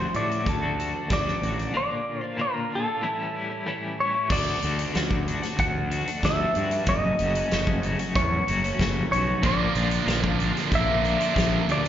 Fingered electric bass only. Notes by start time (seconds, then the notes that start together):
0.14 A2
0.47 D2
1.11 D2
1.42 A1
4.30 D2
4.63 D2
4.96 D2
5.59 D2
6.23 D2
6.56 G2
6.87 F#1
7.20 F#1
7.53 F#1
8.16 E2
8.49 F#1
8.79 F#1
9.12 B1
9.44 A#1
9.75 A#1
10.07 A#1
10.71 A#1
11.36 A#1
11.68 D2